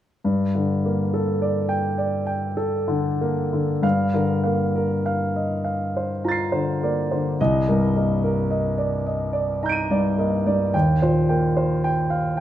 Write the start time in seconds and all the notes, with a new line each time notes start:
0.24 G2
0.55 D3
0.85 A#3
1.14 A4
1.42 D5
1.69 G5
1.98 D5
2.27 G5
2.57 A4
2.88 D3
3.21 A#3
3.53 D3
3.82 G2 F5
4.14 D3 A#4
4.44 A#3 F5
4.75 A#4
5.06 F5
5.36 D#5
5.64 F5
5.96 C5
6.24 F4 A#5
6.28 A6 C7
6.52 D3 C5
6.83 A#3 D5
7.11 D3 C5
7.41 C2 D#5
7.69 G2 A#4
7.96 A#3 D#5
8.24 A#4
8.50 D#5
8.78 D5
9.07 D#5
9.33 D5
9.63 D#4 A#5 G6
9.69 D7 D#7
9.91 G2 D5
10.18 A#3 D#5
10.47 G2 D5
10.74 D#2 G5
11.02 A#2 C5
11.29 A#3 G5
11.57 C5
11.84 G5
12.10 F5
12.37 G5